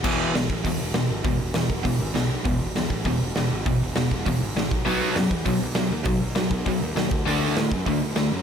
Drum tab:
CC |x-------|--------|--------|--------|
HH |--o-o-o-|o-o-o-o-|o-o-o-o-|o-o-o-o-|
SD |--o---o-|--o---o-|--o---o-|--o---o-|
BD |o--oo---|o--oo---|o--oo---|o--oo--o|

CC |--------|--------|--------|
HH |o-o-o-o-|o-o-o-o-|o-o-o-o-|
SD |--o---o-|--o---o-|--o---o-|
BD |---oo---|o--oo--o|---oo---|